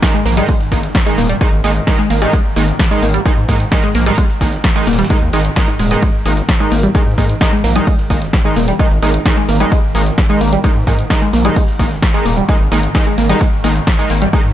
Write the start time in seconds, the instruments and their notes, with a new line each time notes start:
Already playing: synth drone G#2 D#3
0.02 analog polysynth D#3 G#3 D#4, kick, snare, closed hi-hat, ride, shaker
0.14 synth arpeggio sound G#3, ride, shaker
0.26 analog synth bass A#1, synth arpeggio sound A#3, snare, open hi-hat, ride, shaker
0.37 analog polysynth D#3 G#3 D#4, synth arpeggio sound G3, closed hi-hat, shaker
0.49 synth arpeggio sound G#3, kick, closed hi-hat, open hi-hat, shaker
0.60 ride, shaker
0.72 analog synth bass G#1, analog polysynth D#3 G#3 D#4, synth arpeggio sound A#3, kick, open hi-hat, ride, shaker
0.83 snare, closed hi-hat, shaker
0.95 kick, snare, closed hi-hat, ride, shaker
1.06 analog polysynth D#3 G#3 D#4, synth arpeggio sound G#3, shaker
1.18 analog synth bass D#1, synth arpeggio sound A#3, open hi-hat, ride, shaker
1.29 synth arpeggio sound G3, closed hi-hat, shaker
1.41 analog polysynth D#3 G#3 D#4, synth arpeggio sound G#3, kick, closed hi-hat, ride, shaker
1.53 analog synth bass G#1, ride, shaker
1.64 analog synth bass G#1, analog polysynth D#3 G#3 D#4, synth arpeggio sound A#3, open hi-hat, ride, shaker
1.76 closed hi-hat, shaker
1.87 analog polysynth D#3 G#3 D#4, kick, snare, closed hi-hat, ride, shaker
1.99 synth arpeggio sound G#3, shaker
2.10 analog synth bass G#1, synth arpeggio sound A#3, snare, open hi-hat, ride, shaker
2.22 analog polysynth D#3 G#3 D#4, synth arpeggio sound G3, closed hi-hat, shaker
2.33 synth arpeggio sound G#3, kick, closed hi-hat, ride, shaker
2.45 shaker
2.56 analog synth bass G#1, analog polysynth D#3 G#3 D#4, synth arpeggio sound A#3, snare, open hi-hat, ride, shaker
2.68 snare, closed hi-hat, shaker
2.79 kick, snare, closed hi-hat, ride, shaker
2.91 analog polysynth D#3 G#3 D#4, synth arpeggio sound G#3, shaker
3.02 analog synth bass G#1, synth arpeggio sound A#3, open hi-hat, ride, shaker
3.14 synth arpeggio sound G3, closed hi-hat, shaker
3.26 analog polysynth D#3 G#3 D#4, synth arpeggio sound G#3, kick, closed hi-hat, ride, shaker
3.37 analog synth bass G#2, shaker
3.49 analog synth bass G#2, analog polysynth D#3 G#3 D#4, synth arpeggio sound A#3, kick, open hi-hat, ride, shaker
3.60 closed hi-hat, shaker
3.72 analog polysynth D#3 G#3 D#4, kick, snare, closed hi-hat, ride, shaker
3.83 synth arpeggio sound G#3, ride, shaker
3.95 analog synth bass A#1, synth arpeggio sound A#3, snare, open hi-hat, ride, shaker
4.06 analog polysynth D#3 G#3 D#4, synth arpeggio sound G3, closed hi-hat, shaker
4.18 synth arpeggio sound G#3, kick, closed hi-hat, open hi-hat, shaker
4.29 ride, shaker
4.41 analog synth bass G#1, analog polysynth D#3 G#3 D#4, synth arpeggio sound A#3, kick, open hi-hat, ride, shaker
4.53 snare, closed hi-hat, shaker
4.64 kick, snare, closed hi-hat, ride, shaker
4.76 analog polysynth D#3 G#3 D#4, synth arpeggio sound G#3, shaker
4.87 analog synth bass D#1, synth arpeggio sound A#3, snare, open hi-hat, ride, shaker
4.93 snare, ride
4.99 synth arpeggio sound G3, snare, closed hi-hat, ride, shaker
5.04 snare, ride
5.10 analog polysynth D#3 G#3 D#4, synth arpeggio sound G#3, kick, closed hi-hat, ride, shaker
5.22 analog synth bass D#2, ride, shaker
5.33 analog synth bass G#1, analog polysynth D#3 G#3 D#4, synth arpeggio sound G#3, open hi-hat, ride, shaker
5.45 closed hi-hat, shaker
5.56 analog polysynth D#3 G#3 D#4, kick, snare, closed hi-hat, ride, shaker
5.68 synth arpeggio sound D#4, shaker
5.79 analog synth bass D#1, synth arpeggio sound G#3, open hi-hat, ride, shaker
5.91 analog polysynth D#3 G#3 D#4, synth arpeggio sound B3, closed hi-hat, shaker
6.02 synth drone G#2 D#3, synth arpeggio sound G#3, kick, closed hi-hat, ride, shaker
6.14 shaker
6.25 analog synth bass G#1, analog polysynth D#3 G#3 D#4, synth arpeggio sound A#3, snare, open hi-hat, ride, shaker
6.37 snare, closed hi-hat, shaker
6.49 kick, snare, closed hi-hat, ride, shaker
6.60 analog polysynth D#3 G#3 D#4, synth arpeggio sound G#3, shaker
6.72 analog synth bass G#1, synth arpeggio sound A#3, open hi-hat, ride, shaker
6.83 synth arpeggio sound G3, closed hi-hat, shaker
6.95 analog polysynth D#3 G#3 D#4, synth arpeggio sound G#3, kick, closed hi-hat, ride, shaker
7.06 analog synth bass G#2, shaker
7.18 analog synth bass G#2, analog polysynth D#3 G#3 D#4, synth arpeggio sound A#3, kick, open hi-hat, ride, shaker
7.29 closed hi-hat, shaker
7.41 analog polysynth D#3 G#3 D#4, kick, snare, closed hi-hat, ride, shaker
7.52 synth arpeggio sound G#3, ride, shaker
7.64 analog synth bass A#1, synth arpeggio sound A#3, snare, open hi-hat, ride, shaker
7.76 analog polysynth D#3 G#3 D#4, synth arpeggio sound G3, closed hi-hat, shaker
7.87 synth arpeggio sound G#3, kick, closed hi-hat, open hi-hat, shaker
7.99 ride, shaker
8.10 analog synth bass G#1, analog polysynth D#3 G#3 D#4, synth arpeggio sound A#3, kick, open hi-hat, ride, shaker
8.22 snare, closed hi-hat, shaker
8.33 kick, snare, closed hi-hat, ride, shaker
8.45 analog polysynth D#3 G#3 D#4, synth arpeggio sound G#3, shaker
8.56 analog synth bass D#1, synth arpeggio sound A#3, open hi-hat, ride, shaker
8.68 synth arpeggio sound G3, closed hi-hat, shaker
8.79 analog polysynth D#3 G#3 D#4, synth arpeggio sound G#3, kick, closed hi-hat, ride, shaker
8.91 analog synth bass G#1, ride, shaker
9.02 analog synth bass G#1, analog polysynth D#3 G#3 D#4, synth arpeggio sound A#3, open hi-hat, ride, shaker
9.14 closed hi-hat, shaker
9.26 analog polysynth D#3 G#3 D#4, kick, snare, closed hi-hat, ride, shaker
9.37 synth arpeggio sound G#3, shaker
9.49 analog synth bass G#1, synth arpeggio sound A#3, snare, open hi-hat, ride, shaker
9.60 analog polysynth D#3 G#3 D#4, synth arpeggio sound G3, closed hi-hat, shaker
9.72 synth arpeggio sound G#3, kick, closed hi-hat, ride, shaker
9.83 shaker
9.95 analog synth bass G#1, analog polysynth D#3 G#3 D#4, synth arpeggio sound A#3, snare, open hi-hat, ride, shaker
10.06 snare, closed hi-hat, shaker
10.18 kick, snare, closed hi-hat, ride, shaker
10.29 analog polysynth D#3 G#3 D#4, synth arpeggio sound G#3, shaker
10.41 analog synth bass G#1, synth arpeggio sound A#3, open hi-hat, ride, shaker
10.53 synth arpeggio sound G3, closed hi-hat, shaker
10.64 analog polysynth D#3 G#3 D#4, synth arpeggio sound G#3, kick, closed hi-hat, ride, shaker
10.76 analog synth bass G#2, shaker
10.87 analog synth bass G#2, analog polysynth D#3 G#3 D#4, synth arpeggio sound A#3, kick, open hi-hat, ride, shaker
10.99 closed hi-hat, shaker
11.10 analog polysynth D#3 G#3 D#4, kick, snare, closed hi-hat, ride, shaker
11.22 synth arpeggio sound G#3, ride, shaker
11.33 analog synth bass A#1, synth arpeggio sound A#3, snare, open hi-hat, ride, shaker
11.45 analog polysynth D#3 G#3 D#4, synth arpeggio sound G3, closed hi-hat, shaker
11.56 synth arpeggio sound G#3, kick, closed hi-hat, open hi-hat, shaker
11.68 ride, shaker
11.79 analog synth bass G#1, analog polysynth D#3 G#3 D#4, synth arpeggio sound A#3, kick, open hi-hat, ride, shaker
11.91 snare, closed hi-hat, shaker
12.02 kick, snare, closed hi-hat, ride, shaker
12.14 analog polysynth D#3 G#3 D#4, synth arpeggio sound G#3, shaker
12.26 analog synth bass D#1, synth arpeggio sound A#3, open hi-hat, ride, shaker
12.37 synth arpeggio sound G3, closed hi-hat, shaker
12.49 analog polysynth D#3 G#3 D#4, synth arpeggio sound G#3, kick, closed hi-hat, ride, shaker
12.60 analog synth bass G#1, ride, shaker
12.72 analog synth bass G#1, analog polysynth D#3 G#3 D#4, synth arpeggio sound A#3, open hi-hat, ride, shaker
12.83 closed hi-hat, shaker
12.95 analog polysynth D#3 G#3 D#4, kick, snare, closed hi-hat, ride, shaker
13.06 synth arpeggio sound G#3, shaker
13.18 analog synth bass G#1, synth arpeggio sound A#3, snare, open hi-hat, ride, shaker
13.29 analog polysynth D#3 G#3 D#4, synth arpeggio sound G3, closed hi-hat, shaker
13.41 synth arpeggio sound G#3, kick, closed hi-hat, ride, shaker
13.53 shaker
13.64 analog synth bass G#1, analog polysynth D#3 G#3 D#4, synth arpeggio sound A#3, snare, open hi-hat, ride, shaker
13.76 snare, closed hi-hat, shaker
13.87 kick, snare, closed hi-hat, ride, shaker
13.99 analog polysynth D#3 G#3 D#4, synth arpeggio sound G#3, shaker
14.10 analog synth bass G#1, synth arpeggio sound A#3, open hi-hat, ride, shaker
14.22 synth arpeggio sound G3, closed hi-hat, shaker
14.33 analog polysynth D#3 G#3 D#4, synth arpeggio sound G#3, kick, closed hi-hat, ride, shaker
14.45 analog synth bass G#2, shaker